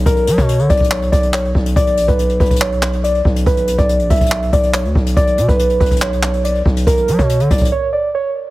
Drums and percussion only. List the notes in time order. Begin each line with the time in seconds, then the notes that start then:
0.06 kick, closed hi-hat
0.16 closed hi-hat
0.27 closed hi-hat
0.38 kick, closed hi-hat
0.49 closed hi-hat
0.59 closed hi-hat
0.70 kick, closed hi-hat, open hi-hat
0.77 kick, closed hi-hat
0.84 closed hi-hat
0.91 clap, closed hi-hat
1.02 closed hi-hat
1.12 kick, closed hi-hat
1.23 closed hi-hat
1.34 clap, closed hi-hat
1.45 closed hi-hat
1.55 kick
1.66 closed hi-hat
1.76 kick, closed hi-hat
1.87 closed hi-hat
1.97 closed hi-hat
2.08 kick, closed hi-hat
2.19 closed hi-hat
2.29 closed hi-hat
2.40 kick, closed hi-hat
2.45 closed hi-hat
2.51 kick, closed hi-hat
2.56 closed hi-hat
2.61 clap, closed hi-hat
2.72 closed hi-hat
2.83 clap, closed hi-hat
2.93 closed hi-hat
3.04 closed hi-hat
3.15 closed hi-hat
3.25 kick
3.36 closed hi-hat
3.46 kick, closed hi-hat
3.57 closed hi-hat
3.67 closed hi-hat
3.78 kick, closed hi-hat
3.89 closed hi-hat
3.99 closed hi-hat
4.10 kick, closed hi-hat, open hi-hat
4.16 closed hi-hat
4.21 kick, closed hi-hat
4.26 closed hi-hat
4.32 clap, closed hi-hat
4.42 closed hi-hat
4.53 kick, closed hi-hat
4.63 closed hi-hat
4.74 clap, closed hi-hat
4.85 closed hi-hat
4.95 kick
5.06 closed hi-hat
5.17 kick, closed hi-hat
5.27 closed hi-hat
5.38 closed hi-hat
5.49 kick, closed hi-hat
5.59 closed hi-hat
5.70 closed hi-hat
5.80 kick, closed hi-hat
5.86 closed hi-hat
5.91 kick, closed hi-hat
5.96 closed hi-hat
6.02 clap, closed hi-hat
6.13 closed hi-hat
6.23 clap, closed hi-hat
6.33 closed hi-hat
6.44 closed hi-hat
6.55 closed hi-hat
6.66 kick
6.76 closed hi-hat
6.87 kick, closed hi-hat
6.97 closed hi-hat
7.08 closed hi-hat
7.19 kick, closed hi-hat
7.29 closed hi-hat
7.40 closed hi-hat
7.50 kick, closed hi-hat, open hi-hat
7.58 kick, closed hi-hat
7.65 closed hi-hat